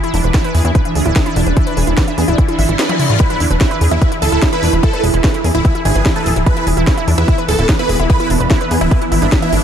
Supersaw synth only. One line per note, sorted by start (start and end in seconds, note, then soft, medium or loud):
3.20 3.38 B4 loud
3.91 4.10 E4 loud
4.22 4.40 A4 loud
4.53 4.71 B4 loud
4.83 5.01 A4 loud
5.55 5.73 E4 loud
5.85 6.03 G#4 loud
6.16 6.34 A4 loud
6.46 6.65 B4 loud
7.18 7.36 E4 loud
7.49 7.67 A4 loud
7.79 7.97 B4 medium
8.10 8.28 B4 loud
8.81 8.99 E4 loud
9.12 9.30 E4 loud
9.42 9.61 E4 medium